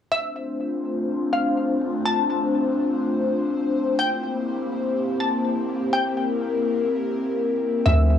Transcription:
0.11 analog synth pad A3 C4 D4 F4 C5, synth pluck E5
1.33 synth pluck F5
2.06 synth pluck A5
3.99 analog synth pad A#3 C4 E4 G4, synth pluck G5
5.20 synth pluck A5
5.93 analog synth pad A#4, synth pluck G5
7.86 808-style bass D2, analog synth pad D3 F3 A3 C4 F4, synth pluck E5

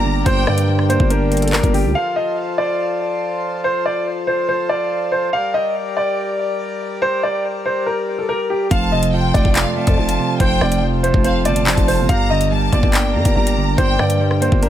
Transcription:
Already playing: 808-style bass G1, clean electric guitar G3 A#3 D4, harmonium G3 G4 A#4 D5, grand piano D5, violin section A#5
0.05 clean electric guitar D3
0.26 808-style bass G1, clean electric guitar G2, grand piano C5, violin section G5, kick, closed hi-hat
0.47 808-style bass G2, clean electric guitar D3, grand piano D5, cross-stick
0.58 closed hi-hat
0.68 clean electric guitar G3
0.79 cross-stick
0.89 clean electric guitar A#3, grand piano C5, closed hi-hat
1.00 808-style bass G1, kick
1.10 clean electric guitar D4, grand piano A#4, closed hi-hat
1.31 clean electric guitar A#3, closed hi-hat
1.37 closed hi-hat
1.42 grand piano A4, closed hi-hat
1.48 closed hi-hat
1.52 clean electric guitar G3, grand piano A#4, clap
1.63 808-style bass G1, kick, closed hi-hat
1.73 clean electric guitar D3, grand piano G4, open hi-hat
1.84 808-style bass D2
1.95 harmonium F3 F4 A4 C5, grand piano F5
2.16 grand piano D#5
2.58 grand piano D5
3.64 grand piano C5
3.86 grand piano D5
4.27 grand piano C5
4.49 grand piano C5
4.69 grand piano D5
5.12 grand piano C5
5.33 harmonium G3 G4 A#4 D5, grand piano F5
5.54 grand piano D#5
5.97 grand piano D5
7.02 grand piano C5
7.23 grand piano D5
7.65 grand piano C5
7.86 grand piano A#4
8.18 grand piano A4
8.29 grand piano A#4
8.50 grand piano G4
8.71 808-style bass F1, clean electric guitar F2, harmonium F3 F4 A4 C5, grand piano F5, violin section A5, kick, closed hi-hat
8.92 clean electric guitar C3, grand piano D#5
9.03 closed hi-hat
9.13 clean electric guitar F3, violin section G5
9.34 808-style bass F1, clean electric guitar A3, grand piano D5, kick, closed hi-hat
9.45 808-style bass F1, kick
9.55 clean electric guitar C4, violin section F5, clap, closed hi-hat
9.76 clean electric guitar A3, violin section A5
9.87 808-style bass F2, kick, closed hi-hat
9.98 808-style bass F1, clean electric guitar F3
10.09 closed hi-hat
10.19 clean electric guitar C3
10.40 808-style bass F1, clean electric guitar F2, grand piano C5, violin section G5, kick, closed hi-hat
10.61 808-style bass F1, clean electric guitar C3, grand piano D5, cross-stick
10.72 closed hi-hat
10.82 clean electric guitar F3
11.03 clean electric guitar A3, grand piano C5, closed hi-hat
11.14 808-style bass F1, kick
11.24 clean electric guitar C4, grand piano C5, violin section F5, closed hi-hat
11.45 808-style bass G1, clean electric guitar A3, grand piano D5, violin section A5, closed hi-hat
11.56 closed hi-hat
11.61 808-style bass F1
11.66 clean electric guitar F3, clap
11.77 808-style bass F1, kick, closed hi-hat
11.88 clean electric guitar C3, grand piano C5, open hi-hat
11.98 808-style bass G1
12.09 808-style bass G1, clean electric guitar G2, harmonium G3 G4 A#4 D5, grand piano F5, violin section A#5, kick, closed hi-hat
12.30 clean electric guitar D3, grand piano D#5
12.41 closed hi-hat
12.51 clean electric guitar G3, violin section A5
12.72 808-style bass G1, clean electric guitar A#3, grand piano D5, kick, closed hi-hat
12.83 808-style bass G1, kick
12.93 clean electric guitar D4, violin section G5, clap, closed hi-hat
13.14 808-style bass G2, clean electric guitar A#3, violin section A#5
13.25 808-style bass G1, kick, closed hi-hat
13.36 808-style bass G1, clean electric guitar G3
13.47 closed hi-hat
13.57 clean electric guitar D3
13.78 808-style bass G1, clean electric guitar G2, grand piano C5, violin section G5, kick, closed hi-hat
13.99 808-style bass G2, clean electric guitar D3, grand piano D5, cross-stick
14.10 closed hi-hat
14.20 clean electric guitar G3
14.31 cross-stick
14.41 clean electric guitar A#3, grand piano C5, closed hi-hat
14.52 808-style bass G1, kick
14.62 clean electric guitar D4, grand piano A#4, closed hi-hat

